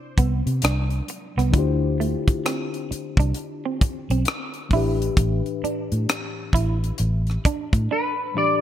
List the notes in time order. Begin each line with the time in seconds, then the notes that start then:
Already playing: C3 C4 D4 E4 C5
0.18 C2 B3, kick, closed hi-hat
0.46 C3, closed hi-hat
0.62 C2 D4, cross-stick, closed hi-hat
0.90 closed hi-hat
1.08 muted clean electric guitar stroke, closed hi-hat
1.37 C2 B3, cross-stick, closed hi-hat
1.51 D2 D3 D4 E4, kick, closed hi-hat
1.56 F4 G4 C5
2.00 A3, closed hi-hat
2.28 muted fingered electric bass stroke, kick, closed hi-hat
2.46 C4, cross-stick, closed hi-hat
2.74 closed hi-hat
2.91 muted clean electric guitar stroke, muted fingered electric bass stroke, closed hi-hat
3.17 C2 D4, kick, closed hi-hat
3.34 closed hi-hat
3.65 C4
3.81 muted fingered electric bass stroke, muted clean electric guitar stroke, kick, closed hi-hat
4.10 B1 C4, closed hi-hat
4.25 cross-stick, closed hi-hat
4.54 closed hi-hat
4.69 A1 A2 E3, kick, open hi-hat
4.73 D4 E4 G4
4.77 B4
5.02 closed hi-hat
5.17 A1, kick, closed hi-hat
5.46 closed hi-hat
5.63 D4, muted fingered electric bass stroke, closed hi-hat
5.92 A2, closed hi-hat
6.09 cross-stick, closed hi-hat
6.53 A1 E4, kick, closed hi-hat
6.84 closed hi-hat
6.98 A1, closed hi-hat
7.27 cross-stick, closed hi-hat
7.45 D4, muted fingered electric bass stroke, kick, closed hi-hat
7.73 A2, kick, closed hi-hat
7.91 D4 B4
8.34 A2 E3 D4 G4 D5, muted clean electric guitar stroke
8.38 D5